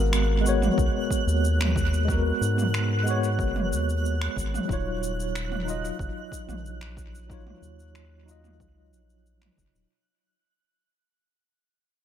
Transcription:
Already playing: analog synth bass G#1, tine electric piano G#3 B3 F#4 A#4, synth texture F#6
0.13 finger snap, shaker
0.41 tine electric piano G#3 B3
0.46 tine electric piano F#4 C#5, shaker
0.62 mid tom, shaker
0.78 analog synth bass B1, kick, shaker
1.11 kick, shaker
1.27 analog synth bass D#2, shaker
1.45 shaker
1.61 finger snap, mid tom
1.76 kick, shaker
1.94 shaker
2.05 tine electric piano G#3 B3, kick
2.10 tine electric piano F#4 A#4, shaker
2.41 analog synth bass G#2, shaker
2.58 mid tom, shaker
2.74 finger snap, shaker
3.03 tine electric piano G#3 B3, shaker
3.08 tine electric piano F#4 C#5
3.24 shaker
3.39 analog synth bass F#1, kick, shaker
3.56 mid tom
3.72 analog synth bass D#2, shaker
3.89 shaker
4.06 shaker
4.21 finger snap
4.37 analog synth bass G#1, kick, shaker
4.54 mid tom, shaker
4.65 tine electric piano F#3 D#4, kick
4.69 analog synth bass D#1, tine electric piano F4 C#5, shaker
5.03 shaker
5.20 shaker
5.35 finger snap, shaker
5.52 mid tom
5.63 tine electric piano F#3 D#4
5.68 tine electric piano F4 D#5, shaker
5.85 shaker
5.99 analog synth bass F#1, kick, shaker
6.32 kick, shaker
6.48 analog synth bass A#1, mid tom, shaker
6.66 shaker
6.81 finger snap
6.97 kick, shaker
7.15 shaker
7.26 tine electric piano F#3 D#4, kick
7.31 tine electric piano F4 C#5, shaker
7.47 mid tom
7.62 analog synth bass D#2, shaker
7.80 shaker
7.95 finger snap, shaker
8.24 tine electric piano F#3 D#4
8.28 tine electric piano F4 D#5, shaker
8.44 mid tom, shaker
8.60 analog synth bass C#2, kick, shaker
8.93 analog synth bass A#1, shaker
9.10 shaker
9.26 shaker
9.42 finger snap, mid tom
9.58 analog synth bass F#1, kick, shaker
9.74 analog synth bass D#1, shaker

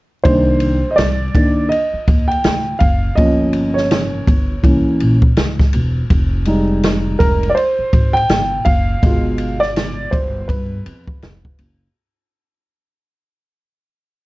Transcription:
0.23 upright bass C2, grand piano D#3 A#3 D4 C5, kick, ride
0.60 ride
0.91 grand piano D#5
0.96 upright bass C2, grand piano D5, snare, hi-hat pedal, ride
1.34 grand piano D#3 A#3 D4, kick, ride
1.69 grand piano D#5, ride
1.93 muted upright bass stroke
2.08 upright bass D#2, kick, ride
2.28 grand piano G5, ride
2.44 upright bass D2, snare, hi-hat pedal, ride
2.79 upright bass F#1, grand piano F5, kick, ride
3.15 upright bass G1, grand piano F3 A#3 C#4 D#5, kick, ride
3.53 ride
3.74 grand piano C#5, snare
3.91 snare, hi-hat pedal, ride
4.27 upright bass G1, kick, ride
4.63 upright bass C2, grand piano E3 A#3 C#4, kick, ride
4.86 muted upright bass stroke
5.00 upright bass A#1, ride
5.22 kick
5.37 upright bass C#2, snare, hi-hat pedal, ride
5.59 kick, snare
5.73 upright bass E1, ride
6.10 upright bass F1, kick, ride
6.45 grand piano G3 G#3 D#4, ride
6.83 snare, hi-hat pedal, ride
7.19 upright bass F1, grand piano A#4, kick, ride
7.43 ride
7.49 grand piano D5
7.55 grand piano C5, ride
7.79 muted upright bass stroke
7.93 upright bass G#1, kick, ride
8.13 grand piano G5, ride
8.29 upright bass G1, snare, hi-hat pedal, ride
8.65 upright bass F#1, grand piano F5, kick, ride
9.02 upright bass G1, grand piano B2 G#3 F4, kick, ride
9.38 ride
9.60 grand piano D5, snare
9.76 snare, hi-hat pedal, ride
10.11 upright bass G1, grand piano C5, kick, ride
10.48 upright bass G2, grand piano B4, kick, ride
10.86 upright bass F2, ride
11.07 kick
11.22 upright bass F1, snare, hi-hat pedal, ride
11.45 kick
11.58 upright bass F#1, ride

